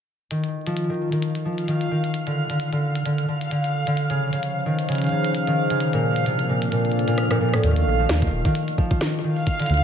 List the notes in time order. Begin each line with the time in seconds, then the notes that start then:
0.31 D#3 F5, closed hi-hat
0.44 closed hi-hat
0.67 F3, closed hi-hat
0.77 closed hi-hat
0.89 D#3
1.12 D#3, closed hi-hat
1.22 closed hi-hat
1.35 closed hi-hat
1.45 F3
1.58 closed hi-hat
1.68 D#3, closed hi-hat
1.81 closed hi-hat
1.91 D#3
2.04 closed hi-hat
2.14 closed hi-hat
2.27 D3, closed hi-hat
2.50 D3, closed hi-hat
2.60 closed hi-hat
2.73 D3, closed hi-hat
2.95 closed hi-hat
3.06 D3, closed hi-hat
3.18 closed hi-hat
3.28 D3
3.41 closed hi-hat
3.51 D3, closed hi-hat
3.64 closed hi-hat
3.87 D3, closed hi-hat
3.97 F3, closed hi-hat
4.10 C#3, closed hi-hat
4.22 C#4 C5
4.33 C#3, closed hi-hat
4.43 closed hi-hat
4.66 D#3
4.71 D#4 G#4
4.79 closed hi-hat
4.89 C#3, closed hi-hat
4.92 closed hi-hat
4.95 closed hi-hat
4.98 closed hi-hat
5.02 closed hi-hat
5.04 closed hi-hat
5.12 C#3
5.25 closed hi-hat
5.35 closed hi-hat
5.47 D#3, closed hi-hat
5.70 C#3, closed hi-hat
5.80 closed hi-hat
5.93 A#2 D4, closed hi-hat
6.16 A#3, closed hi-hat
6.26 C3, closed hi-hat
6.39 closed hi-hat
6.49 A#2
6.62 A4 D5, closed hi-hat
6.72 A#2, closed hi-hat
6.85 closed hi-hat
6.92 closed hi-hat
6.99 closed hi-hat
7.08 A#2, closed hi-hat
7.18 cross-stick, closed hi-hat
7.31 A#2, cross-stick, closed hi-hat
7.41 A#2
7.53 A2, cross-stick, closed hi-hat
7.64 D#2 D#3 F5, closed hi-hat
7.76 closed hi-hat
7.87 A#1
7.99 F3
8.09 D#2, snare, closed hi-hat
8.22 D#3, kick, closed hi-hat
8.32 D#1
8.45 D#3, kick, closed hi-hat
8.55 closed hi-hat
8.68 closed hi-hat
8.78 F3, kick
8.91 kick, closed hi-hat
9.01 D#3, snare, closed hi-hat
9.24 D#3
9.47 kick, closed hi-hat
9.60 D3, closed hi-hat
9.62 closed hi-hat
9.66 D2, closed hi-hat
9.70 closed hi-hat
9.74 closed hi-hat
9.77 closed hi-hat